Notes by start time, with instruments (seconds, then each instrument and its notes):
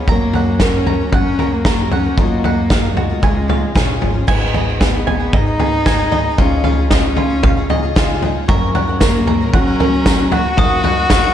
0.08 upright bass F#2, steel-string acoustic guitar F#2 F#3 A#3 C#4, twelve-string acoustic guitar F#3 C#4 F#4 A#4, cello A#3, five-string banjo A#5, kick, floor tom
0.12 steel-string acoustic guitar A#4
0.34 twelve-string acoustic guitar F#3 C#4 F#4 A#4, steel-string acoustic guitar C#4, five-string banjo F#5, floor tom
0.60 twelve-string acoustic guitar F#3 C#4 F#4 A#4, steel-string acoustic guitar A#3, cello C#4, five-string banjo A#4, kick, snare, floor tom
0.74 twelve-string acoustic guitar C#4 F#4 A#4
0.87 steel-string acoustic guitar F#3 C#4, five-string banjo A#5, floor tom
1.01 twelve-string acoustic guitar C#4 F#4 A#4
1.12 upright bass F#2, cello C#4, steel-string acoustic guitar A#4, five-string banjo F#5, kick, floor tom
1.27 twelve-string acoustic guitar C#4 F#4 A#4
1.39 steel-string acoustic guitar C#3 A#3, twelve-string acoustic guitar F#3 C#4 F#4 A#4, five-string banjo A#4, floor tom
1.52 cello A#3
1.65 twelve-string acoustic guitar F#3 C#4 F#4 A#4, steel-string acoustic guitar A#4, five-string banjo A#5, kick, snare, floor tom
1.92 twelve-string acoustic guitar F#3 C#4 F#4 A#4, steel-string acoustic guitar A#3, cello C#4, five-string banjo F#5, floor tom
2.05 twelve-string acoustic guitar C#4 F#4 A#4
2.17 upright bass F#2, steel-string acoustic guitar F#2 F#3 A#3 F4, twelve-string acoustic guitar F#3 D#4 F4 A#4, cello A#3, kick, floor tom
2.22 steel-string acoustic guitar F#4
2.44 twelve-string acoustic guitar F#3 D#4 F4 A#4, five-string banjo F#5, floor tom
2.70 steel-string acoustic guitar A#2, twelve-string acoustic guitar F#3 D#4 F4 A#4, five-string banjo F5, kick, snare, floor tom
2.82 twelve-string acoustic guitar D#4 F4 A#4
2.90 cello F#3
2.97 steel-string acoustic guitar B2, cello G#3, five-string banjo F#4, floor tom
3.09 twelve-string acoustic guitar D#4 F4 A#4
3.22 upright bass C#2, twelve-string acoustic guitar C#3 G#3 C#4 F4 G#4, steel-string acoustic guitar C#3, five-string banjo G#5, kick, floor tom
3.35 twelve-string acoustic guitar C#4 F4 G#4
3.48 twelve-string acoustic guitar G#3 C#4 F4 G#4, steel-string acoustic guitar F4, five-string banjo F5, floor tom
3.75 upright bass A#1, twelve-string acoustic guitar C#3 G#3 C#4 F4 G#4, steel-string acoustic guitar C#4, five-string banjo G#4, kick, snare, floor tom
4.01 upright bass G#1, steel-string acoustic guitar F3 F4, twelve-string acoustic guitar G#3 C#4 F4 G#4, floor tom
4.14 twelve-string acoustic guitar C#4 F4 G#4
4.27 upright bass G#1, upright piano G#1 G#2 G#3 B3 D#4 B4, twelve-string acoustic guitar G#2 D#3 G#3 B3 D#4 G#4, five-string banjo G#5, kick, floor tom, crash
4.54 twelve-string acoustic guitar G#3 B3 D#4 G#4, five-string banjo D#5, floor tom
4.68 twelve-string acoustic guitar G#3 B3 D#4 G#4
4.80 twelve-string acoustic guitar G#2 D#3 G#3 B3 D#4 G#4, cello B3, five-string banjo G#4, kick, snare, floor tom
4.94 twelve-string acoustic guitar G#3 B3 D#4 G#4
5.07 five-string banjo G#5, floor tom
5.19 twelve-string acoustic guitar G#3 B3 D#4 G#4
5.33 upright bass G#2, cello D#4, five-string banjo D#5, kick, floor tom
5.46 twelve-string acoustic guitar G#3 B3 D#4 G#4
5.59 twelve-string acoustic guitar G#3 B3 D#4 G#4, five-string banjo G#4, floor tom
5.72 twelve-string acoustic guitar G#3 B3 D#4 G#4
5.86 twelve-string acoustic guitar G#2 D#3 G#3 B3 D#4 G#4, five-string banjo G#5, kick, snare, floor tom
5.99 twelve-string acoustic guitar G#3 B3 D#4 G#4
6.12 twelve-string acoustic guitar G#3 B3 D#4 G#4, five-string banjo D#5, floor tom
6.38 upright bass C#2, upright piano C#2 C#3 F3 C#4 D#4 G#4, twelve-string acoustic guitar C#3 G#3 D#4 F4 G#4, cello C#4, five-string banjo F4, kick, floor tom
6.64 twelve-string acoustic guitar G#3 D#4 F4 G#4, five-string banjo F5, floor tom
6.78 twelve-string acoustic guitar D#4 F4 G#4
6.91 twelve-string acoustic guitar C#3 G#3 D#4 F4 G#4, cello C#4, five-string banjo D#5, kick, snare, floor tom
7.04 twelve-string acoustic guitar D#4 F4 G#4
7.16 five-string banjo F4, floor tom
7.30 twelve-string acoustic guitar D#4 F4 G#4
7.43 upright bass C#3, five-string banjo F5, kick, floor tom
7.57 twelve-string acoustic guitar D#4 F4 G#4
7.69 twelve-string acoustic guitar G#3 D#4 F4 G#4, five-string banjo D#5, floor tom
7.83 twelve-string acoustic guitar D#4 F4 G#4
7.95 twelve-string acoustic guitar C#3 G#3 D#4 F4 G#4, five-string banjo F4, kick, snare, floor tom
8.22 twelve-string acoustic guitar G#3 D#4 F4 G#4, floor tom
8.48 upright piano F#1 F#2 F#3 A#3 C#4 A#4, upright bass F#2, string section C#3 F#3 A#3 A#4, twelve-string acoustic guitar F#3 C#4 F#4 A#4, five-string banjo A#5, glockenspiel C#6, kick, floor tom
8.75 twelve-string acoustic guitar F#3 C#4 F#4 A#4, five-string banjo F#5, floor tom
8.87 twelve-string acoustic guitar C#4 F#4 A#4
9.00 twelve-string acoustic guitar F#3 C#4 F#4 A#4, cello A#3, five-string banjo A#4, kick, snare, floor tom, tambourine
9.15 twelve-string acoustic guitar C#4 F#4 A#4
9.27 five-string banjo A#5, floor tom
9.41 twelve-string acoustic guitar C#4 F#4 A#4
9.53 upright bass F#3, cello C#4, five-string banjo F#5, kick, floor tom
9.68 twelve-string acoustic guitar C#4 F#4 A#4
9.80 twelve-string acoustic guitar F#3 C#4 F#4 A#4, five-string banjo A#4, floor tom
9.93 twelve-string acoustic guitar C#4 F#4 A#4
10.06 twelve-string acoustic guitar F#3 C#4 F#4 A#4, five-string banjo A#5, kick, snare, floor tom, tambourine
10.19 twelve-string acoustic guitar C#4 F#4 A#4
10.32 twelve-string acoustic guitar F#3 C#4 F#4 A#4, cello F#4, five-string banjo F#5, floor tom
10.57 upright piano F#1 F#2 F#3 D#4 A#4 F5, upright bass F#2, string section D#3 F#3 F#4, twelve-string acoustic guitar F#3 D#4 F4 A#4, glockenspiel D#6, kick, floor tom
10.84 twelve-string acoustic guitar F#3 D#4 F4 A#4, five-string banjo F#5, floor tom
10.98 twelve-string acoustic guitar D#4 F4 A#4
11.10 twelve-string acoustic guitar F#3 D#4 F4 A#4, five-string banjo F5, kick, snare, floor tom, tambourine
11.24 twelve-string acoustic guitar D#4 F4 A#4